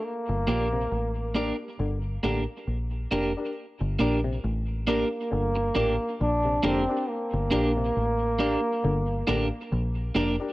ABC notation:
X:1
M:4/4
L:1/16
Q:"Swing 16ths" 1/4=68
K:Gm
V:1 name="Upright piano"
z2 [DGB] z3 [DGB] [GB] z2 [DGB] z3 [DGB] [DGB] | z2 [DGB] z3 [DGB] [GB] z2 [DGB] z3 [DGB] [DGB] | z2 [DGB] z3 [DGB] [GB] z2 [DGB] z3 [DGB] [DGB] |]
V:2 name="Clean electric guitar"
z2 [B,DGB]2 z2 [B,DGB]2 z2 [B,DGB]2 z2 [B,DGB]2 | z2 [B,DGB]2 z2 [B,DGB]2 z2 [B,DGB]2 z2 [B,DGB]2 | z2 [B,DGB]2 z2 [B,DGB]2 z2 [B,DGB]2 z2 [B,DGB]2 |]
V:3 name="Trombone"
B,8 z8 | z6 B,6 D2 C2 | B,12- B,2 z2 |]
V:4 name="Clav" clef=bass
z2 B,, C, z4 D, z D, z4 z | z2 B,, C, z4 D, z B,, z2 C, D, z | z2 B,, C, z4 D, z D, z4 z |]
V:5 name="Fingered electric bass" clef=bass
z G,,, B,,,2 A,,,3 z G,,,2 A,,, z B,,,2 F,,, z | z G,,, B,,,2 A,,,3 z G,,,2 A,,, z B,,,2 F,,, z | z G,,, B,,,2 A,,,3 z G,,,2 A,,, z B,,,2 F,,, z |]